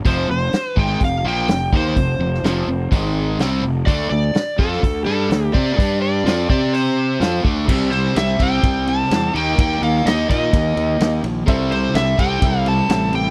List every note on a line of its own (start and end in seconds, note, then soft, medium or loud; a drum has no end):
0.05 0.27 F1 medium
0.05 0.28 F2 medium
0.05 0.28 C3 medium
0.05 0.29 F3 medium
0.05 0.30 C5 medium
0.05 kick loud
0.05 open hi-hat soft
0.29 0.51 F1 medium
0.29 0.48 F2 medium
0.29 0.48 C3 medium
0.29 0.67 C5 medium
0.53 muted fingered electric bass stroke soft
0.53 muted overdriven electric guitar stroke medium
0.53 muted distorted electric guitar stroke medium
0.53 snare loud
0.53 open hi-hat soft
0.67 0.79 B4 medium
0.77 0.99 G#1 medium
0.77 1.00 G#2 medium
0.77 1.00 D#3 medium
0.77 1.01 G#3 loud
0.77 1.02 G5 medium
0.77 kick loud
1.01 1.23 F1 medium
1.01 1.20 F2 medium
1.01 1.20 C3 medium
1.01 kick medium
1.01 open hi-hat soft
1.05 1.27 F5 loud
1.24 1.46 A#1 medium
1.24 1.48 A#2 medium
1.24 1.48 F3 medium
1.24 1.48 A#3 medium
1.24 1.75 G5 loud
1.48 1.70 F1 medium
1.48 1.67 F2 medium
1.48 1.68 C3 medium
1.48 snare loud
1.48 open hi-hat soft
1.72 1.95 D#2 medium
1.72 1.95 D#3 medium
1.72 1.95 A#3 medium
1.72 1.96 D#4 medium
1.72 kick loud
1.76 3.13 C5 medium
1.96 2.18 F1 medium
1.96 2.15 F2 medium
1.96 2.15 C3 medium
1.96 kick medium
1.96 open hi-hat medium
2.19 2.41 F1 medium
2.19 2.39 F2 medium
2.19 2.39 C3 medium
2.34 snare soft
2.43 2.66 F1 medium
2.43 2.67 F2 medium
2.43 2.67 C3 medium
2.43 2.67 F3 loud
2.43 snare loud
2.43 open hi-hat soft
2.67 2.90 F1 medium
2.67 2.87 F2 medium
2.67 2.87 C3 medium
2.91 3.36 G#1 medium
2.91 3.38 G#2 medium
2.91 3.38 D#3 loud
2.91 3.39 G#3 medium
2.91 kick loud
2.91 open hi-hat medium
3.39 3.61 C2 medium
3.39 3.62 C3 medium
3.39 3.62 G3 medium
3.39 3.63 C4 medium
3.39 snare loud
3.39 open hi-hat soft
3.62 3.85 F1 medium
3.62 3.82 F2 medium
3.62 3.82 C3 medium
3.86 4.09 D2 medium
3.86 4.10 D3 loud
3.86 4.10 A3 medium
3.86 4.10 D4 medium
3.86 4.09 D5 loud
3.86 kick loud
3.86 open hi-hat soft
4.10 4.33 D2 medium
4.10 4.30 D3 medium
4.10 4.30 A3 medium
4.10 4.59 D5 loud
4.35 muted distorted electric guitar stroke medium
4.35 muted fingered electric bass stroke soft
4.35 muted overdriven electric guitar stroke medium
4.35 snare loud
4.35 open hi-hat soft
4.58 4.81 F2 medium
4.58 4.81 F3 medium
4.58 4.82 C4 medium
4.58 4.82 F4 medium
4.58 5.04 A4 medium
4.58 kick loud
4.73 snare soft
4.83 5.05 D2 medium
4.83 5.01 D3 medium
4.83 5.02 A3 medium
4.83 kick medium
4.83 open hi-hat soft
5.05 5.28 G2 medium
5.05 5.29 G3 medium
5.05 5.30 D4 medium
5.05 5.30 G4 loud
5.05 5.55 A4 medium
5.29 5.52 D2 medium
5.29 5.49 D3 medium
5.29 5.49 A3 medium
5.29 snare loud
5.29 open hi-hat soft
5.53 5.76 C3 medium
5.53 5.77 C4 medium
5.53 5.77 G4 medium
5.53 5.78 C5 medium
5.53 5.98 D5 loud
5.53 kick loud
5.77 6.22 G2 medium
5.77 6.24 G3 medium
5.77 6.24 D4 medium
5.77 6.25 G4 medium
5.77 kick loud
5.77 open hi-hat medium
6.02 6.49 D5 medium
6.24 6.47 F2 medium
6.24 6.48 F3 medium
6.24 6.48 C4 loud
6.24 6.49 F4 medium
6.24 snare loud
6.24 open hi-hat medium
6.49 7.17 C3 medium
6.49 7.19 C4 medium
6.49 7.20 G4 medium
6.49 7.20 C5 medium
6.49 6.74 D5 medium
6.49 kick loud
6.73 7.40 C5 medium
6.73 open hi-hat medium
7.20 7.42 F2 medium
7.20 7.43 F3 medium
7.20 7.44 C4 medium
7.20 7.44 F4 medium
7.20 snare loud
7.20 open hi-hat soft
7.43 7.66 D2 medium
7.43 7.67 D3 medium
7.43 7.67 A3 medium
7.43 7.67 D4 medium
7.43 kick loud
7.67 8.07 C2 medium
7.67 7.89 C3 medium
7.67 7.90 G3 medium
7.67 7.90 C4 loud
7.67 kick loud
7.67 crash loud
7.91 8.13 C3 medium
7.91 8.13 G3 medium
7.91 8.16 C5 medium
7.91 ride medium
8.15 8.35 C2 medium
8.15 8.37 C3 medium
8.15 8.37 G3 medium
8.15 8.41 E5 medium
8.15 snare loud
8.15 ride medium
8.39 8.59 C2 medium
8.39 8.62 C3 medium
8.39 8.62 G3 medium
8.39 8.62 C4 medium
8.39 8.90 G5 loud
8.39 kick medium
8.39 ride medium
8.63 9.02 C2 medium
8.63 8.84 C3 medium
8.63 8.85 G3 medium
8.63 kick loud
8.63 ride medium
8.87 9.08 C3 medium
8.87 9.08 G3 medium
8.87 9.32 A5 loud
8.87 ride medium
9.10 9.30 E2 medium
9.10 9.32 C3 medium
9.10 9.32 G3 medium
9.10 snare loud
9.10 ride medium
9.34 9.54 D#2 medium
9.34 9.57 D#3 medium
9.34 9.57 A#3 medium
9.34 9.57 D#4 medium
9.34 9.59 G5 medium
9.34 ride medium
9.58 9.77 D#2 medium
9.58 9.79 D#3 medium
9.58 9.80 A#3 medium
9.58 9.83 G5 loud
9.58 kick loud
9.58 ride medium
9.81 10.01 D#2 medium
9.81 10.03 D#3 medium
9.81 10.03 A#3 medium
9.81 10.07 F5 medium
9.81 ride medium
9.96 snare soft
10.04 10.25 D#2 medium
10.04 10.26 D#3 medium
10.04 10.27 A#3 medium
10.04 11.24 D#4 medium
10.04 10.29 D#5 medium
10.04 snare loud
10.04 ride medium
10.28 10.49 A#2 medium
10.28 10.51 D#3 medium
10.28 10.51 A#3 medium
10.28 10.51 D#4 loud
10.28 11.20 D#5 medium
10.28 kick medium
10.28 ride medium
10.52 10.72 D#2 medium
10.52 10.74 D#3 medium
10.52 10.74 A#3 medium
10.52 kick loud
10.52 ride loud
10.76 10.96 D#2 medium
10.76 10.98 D#3 medium
10.76 10.98 A#3 medium
10.76 ride medium
11.00 11.19 D#2 medium
11.00 11.21 D#3 medium
11.00 11.21 A#3 medium
11.00 snare loud
11.00 ride medium
11.23 11.43 A#1 medium
11.23 11.45 D#3 medium
11.23 11.45 A#3 medium
11.23 ride medium
11.46 11.86 C2 medium
11.46 11.69 C3 medium
11.46 11.70 G3 medium
11.46 11.70 C4 loud
11.46 11.85 A4 loud
11.46 11.85 C5 loud
11.46 11.86 E5 loud
11.46 kick loud
11.46 ride medium
11.71 11.92 C3 medium
11.71 11.92 G3 medium
11.71 11.94 C5 medium
11.71 ride medium
11.94 12.14 C2 medium
11.94 12.16 C3 medium
11.94 12.16 G3 medium
11.94 12.13 A4 medium
11.94 12.14 C5 medium
11.94 12.19 E5 medium
11.94 12.14 E5 medium
11.94 snare loud
11.94 ride medium
12.17 12.38 C2 medium
12.17 12.41 C3 medium
12.17 12.41 G3 medium
12.17 12.41 C4 medium
12.17 12.37 A4 medium
12.17 12.37 C5 medium
12.17 12.68 G5 loud
12.17 12.38 G5 medium
12.17 kick medium
12.17 ride medium
12.42 12.80 C2 medium
12.42 12.63 C3 medium
12.42 12.64 G3 medium
12.42 12.80 A4 medium
12.42 12.80 C5 medium
12.42 12.81 E5 medium
12.42 kick loud
12.42 ride medium
12.66 12.87 C3 medium
12.66 12.87 G3 medium
12.66 13.16 A5 loud
12.66 ride medium
12.88 13.27 A1 medium
12.88 13.11 C3 medium
12.88 13.11 G3 medium
12.88 13.26 A4 medium
12.88 13.27 C5 medium
12.88 13.28 E5 medium
12.88 snare loud
12.88 ride medium
13.13 13.30 C3 medium
13.13 13.30 G3 medium
13.13 13.30 G5 medium
13.13 ride medium